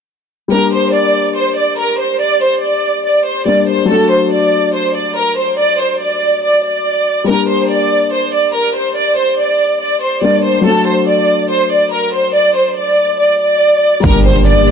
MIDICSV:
0, 0, Header, 1, 7, 480
1, 0, Start_track
1, 0, Key_signature, -2, "minor"
1, 0, Tempo, 422535
1, 588, Time_signature, 4, 2, 24, 8
1, 16713, End_track
2, 0, Start_track
2, 0, Title_t, "Violin section"
2, 0, Program_c, 0, 48
2, 589, Note_on_c, 0, 70, 98
2, 800, Note_off_c, 0, 70, 0
2, 831, Note_on_c, 0, 72, 90
2, 1041, Note_off_c, 0, 72, 0
2, 1070, Note_on_c, 0, 74, 84
2, 1521, Note_off_c, 0, 74, 0
2, 1550, Note_on_c, 0, 72, 85
2, 1760, Note_off_c, 0, 72, 0
2, 1790, Note_on_c, 0, 74, 77
2, 2000, Note_off_c, 0, 74, 0
2, 2029, Note_on_c, 0, 70, 82
2, 2240, Note_off_c, 0, 70, 0
2, 2269, Note_on_c, 0, 72, 79
2, 2480, Note_off_c, 0, 72, 0
2, 2509, Note_on_c, 0, 74, 94
2, 2720, Note_off_c, 0, 74, 0
2, 2750, Note_on_c, 0, 72, 82
2, 2960, Note_off_c, 0, 72, 0
2, 2988, Note_on_c, 0, 74, 73
2, 3439, Note_off_c, 0, 74, 0
2, 3469, Note_on_c, 0, 74, 74
2, 3680, Note_off_c, 0, 74, 0
2, 3707, Note_on_c, 0, 72, 75
2, 3919, Note_off_c, 0, 72, 0
2, 3948, Note_on_c, 0, 74, 80
2, 4159, Note_off_c, 0, 74, 0
2, 4188, Note_on_c, 0, 72, 83
2, 4399, Note_off_c, 0, 72, 0
2, 4429, Note_on_c, 0, 69, 108
2, 4640, Note_off_c, 0, 69, 0
2, 4670, Note_on_c, 0, 72, 90
2, 4880, Note_off_c, 0, 72, 0
2, 4909, Note_on_c, 0, 74, 88
2, 5360, Note_off_c, 0, 74, 0
2, 5390, Note_on_c, 0, 72, 87
2, 5600, Note_off_c, 0, 72, 0
2, 5629, Note_on_c, 0, 74, 78
2, 5840, Note_off_c, 0, 74, 0
2, 5870, Note_on_c, 0, 70, 86
2, 6080, Note_off_c, 0, 70, 0
2, 6109, Note_on_c, 0, 72, 80
2, 6320, Note_off_c, 0, 72, 0
2, 6347, Note_on_c, 0, 74, 103
2, 6558, Note_off_c, 0, 74, 0
2, 6587, Note_on_c, 0, 72, 80
2, 6799, Note_off_c, 0, 72, 0
2, 6827, Note_on_c, 0, 74, 78
2, 7279, Note_off_c, 0, 74, 0
2, 7309, Note_on_c, 0, 74, 88
2, 7520, Note_off_c, 0, 74, 0
2, 7548, Note_on_c, 0, 74, 78
2, 8225, Note_off_c, 0, 74, 0
2, 8267, Note_on_c, 0, 70, 101
2, 8479, Note_off_c, 0, 70, 0
2, 8508, Note_on_c, 0, 72, 87
2, 8719, Note_off_c, 0, 72, 0
2, 8749, Note_on_c, 0, 74, 82
2, 9200, Note_off_c, 0, 74, 0
2, 9229, Note_on_c, 0, 72, 88
2, 9440, Note_off_c, 0, 72, 0
2, 9469, Note_on_c, 0, 74, 80
2, 9680, Note_off_c, 0, 74, 0
2, 9708, Note_on_c, 0, 70, 80
2, 9919, Note_off_c, 0, 70, 0
2, 9948, Note_on_c, 0, 72, 79
2, 10159, Note_off_c, 0, 72, 0
2, 10187, Note_on_c, 0, 74, 94
2, 10399, Note_off_c, 0, 74, 0
2, 10428, Note_on_c, 0, 72, 83
2, 10639, Note_off_c, 0, 72, 0
2, 10667, Note_on_c, 0, 74, 75
2, 11119, Note_off_c, 0, 74, 0
2, 11146, Note_on_c, 0, 74, 77
2, 11358, Note_off_c, 0, 74, 0
2, 11387, Note_on_c, 0, 72, 74
2, 11599, Note_off_c, 0, 72, 0
2, 11628, Note_on_c, 0, 74, 81
2, 11839, Note_off_c, 0, 74, 0
2, 11867, Note_on_c, 0, 72, 86
2, 12079, Note_off_c, 0, 72, 0
2, 12107, Note_on_c, 0, 69, 113
2, 12319, Note_off_c, 0, 69, 0
2, 12348, Note_on_c, 0, 72, 91
2, 12559, Note_off_c, 0, 72, 0
2, 12589, Note_on_c, 0, 74, 87
2, 13040, Note_off_c, 0, 74, 0
2, 13070, Note_on_c, 0, 72, 92
2, 13280, Note_off_c, 0, 72, 0
2, 13309, Note_on_c, 0, 74, 82
2, 13520, Note_off_c, 0, 74, 0
2, 13550, Note_on_c, 0, 70, 81
2, 13760, Note_off_c, 0, 70, 0
2, 13789, Note_on_c, 0, 72, 79
2, 14000, Note_off_c, 0, 72, 0
2, 14028, Note_on_c, 0, 74, 102
2, 14239, Note_off_c, 0, 74, 0
2, 14269, Note_on_c, 0, 72, 80
2, 14480, Note_off_c, 0, 72, 0
2, 14508, Note_on_c, 0, 74, 82
2, 14959, Note_off_c, 0, 74, 0
2, 14990, Note_on_c, 0, 74, 88
2, 15200, Note_off_c, 0, 74, 0
2, 15230, Note_on_c, 0, 74, 81
2, 15906, Note_off_c, 0, 74, 0
2, 15949, Note_on_c, 0, 70, 103
2, 16160, Note_off_c, 0, 70, 0
2, 16190, Note_on_c, 0, 72, 95
2, 16400, Note_off_c, 0, 72, 0
2, 16430, Note_on_c, 0, 74, 87
2, 16713, Note_off_c, 0, 74, 0
2, 16713, End_track
3, 0, Start_track
3, 0, Title_t, "Grand piano"
3, 0, Program_c, 1, 0
3, 549, Note_on_c, 1, 55, 66
3, 582, Note_on_c, 1, 58, 57
3, 614, Note_on_c, 1, 62, 58
3, 648, Note_on_c, 1, 67, 73
3, 804, Control_c, 1, 64, 127
3, 3883, Note_off_c, 1, 55, 0
3, 3899, Note_off_c, 1, 58, 0
3, 3916, Note_off_c, 1, 62, 0
3, 3922, Note_on_c, 1, 55, 54
3, 3932, Note_off_c, 1, 67, 0
3, 3939, Note_on_c, 1, 58, 45
3, 3955, Note_on_c, 1, 62, 45
3, 3973, Note_on_c, 1, 67, 55
3, 4376, Note_on_c, 1, 54, 65
3, 4409, Note_on_c, 1, 57, 62
3, 4415, Note_off_c, 1, 55, 0
3, 4424, Note_off_c, 1, 58, 0
3, 4425, Note_off_c, 1, 62, 0
3, 4440, Note_off_c, 1, 67, 0
3, 4442, Note_on_c, 1, 62, 60
3, 4444, Control_c, 1, 64, 0
3, 4475, Note_on_c, 1, 66, 69
3, 4634, Control_c, 1, 64, 127
3, 8197, Note_off_c, 1, 54, 0
3, 8213, Note_off_c, 1, 57, 0
3, 8229, Note_off_c, 1, 62, 0
3, 8229, Note_on_c, 1, 55, 63
3, 8246, Note_off_c, 1, 66, 0
3, 8263, Note_on_c, 1, 58, 58
3, 8284, Control_c, 1, 64, 0
3, 8296, Note_on_c, 1, 62, 58
3, 8328, Note_on_c, 1, 67, 72
3, 8505, Control_c, 1, 64, 127
3, 11563, Note_off_c, 1, 55, 0
3, 11580, Note_off_c, 1, 58, 0
3, 11597, Note_off_c, 1, 62, 0
3, 11604, Note_on_c, 1, 55, 54
3, 11613, Note_off_c, 1, 67, 0
3, 11619, Note_on_c, 1, 58, 46
3, 11636, Note_on_c, 1, 62, 44
3, 11653, Note_on_c, 1, 67, 59
3, 12055, Note_on_c, 1, 54, 66
3, 12089, Note_on_c, 1, 57, 65
3, 12096, Note_off_c, 1, 55, 0
3, 12104, Note_off_c, 1, 58, 0
3, 12105, Note_off_c, 1, 62, 0
3, 12120, Note_off_c, 1, 67, 0
3, 12121, Control_c, 1, 64, 0
3, 12122, Note_on_c, 1, 62, 61
3, 12155, Note_on_c, 1, 66, 72
3, 12347, Control_c, 1, 64, 127
3, 15876, Note_off_c, 1, 54, 0
3, 15893, Note_off_c, 1, 57, 0
3, 15906, Note_on_c, 1, 55, 65
3, 15910, Note_off_c, 1, 62, 0
3, 15926, Note_off_c, 1, 66, 0
3, 15939, Note_on_c, 1, 58, 60
3, 15963, Control_c, 1, 64, 0
3, 15971, Note_on_c, 1, 62, 62
3, 16004, Note_on_c, 1, 67, 74
3, 16158, Control_c, 1, 64, 127
3, 16713, Note_off_c, 1, 55, 0
3, 16713, Note_off_c, 1, 58, 0
3, 16713, Note_off_c, 1, 62, 0
3, 16713, Note_off_c, 1, 67, 0
3, 16713, End_track
4, 0, Start_track
4, 0, Title_t, "Ambient pad"
4, 0, Program_c, 2, 92
4, 15948, Note_on_c, 2, 50, 89
4, 15948, Note_on_c, 2, 55, 78
4, 15948, Note_on_c, 2, 58, 81
4, 15948, Note_on_c, 2, 67, 96
4, 16713, Note_off_c, 2, 50, 0
4, 16713, Note_off_c, 2, 55, 0
4, 16713, Note_off_c, 2, 58, 0
4, 16713, Note_off_c, 2, 67, 0
4, 16713, End_track
5, 0, Start_track
5, 0, Title_t, "808-style bass"
5, 0, Program_c, 3, 38
5, 15948, Note_on_c, 3, 31, 111
5, 16713, Note_off_c, 3, 31, 0
5, 16713, End_track
6, 0, Start_track
6, 0, Title_t, "Impact"
6, 0, Program_c, 4, 103
6, 15949, Note_on_c, 4, 60, 84
6, 16713, Note_off_c, 4, 60, 0
6, 16713, End_track
7, 0, Start_track
7, 0, Title_t, "Drums"
7, 15948, Note_on_c, 9, 36, 113
7, 15948, Note_on_c, 9, 42, 87
7, 15948, Note_on_c, 9, 49, 100
7, 16061, Note_off_c, 9, 42, 0
7, 16061, Note_off_c, 9, 49, 0
7, 16062, Note_off_c, 9, 36, 0
7, 16310, Note_on_c, 9, 42, 79
7, 16424, Note_off_c, 9, 42, 0
7, 16427, Note_on_c, 9, 42, 74
7, 16540, Note_off_c, 9, 42, 0
7, 16671, Note_on_c, 9, 42, 76
7, 16713, Note_off_c, 9, 42, 0
7, 16713, End_track
0, 0, End_of_file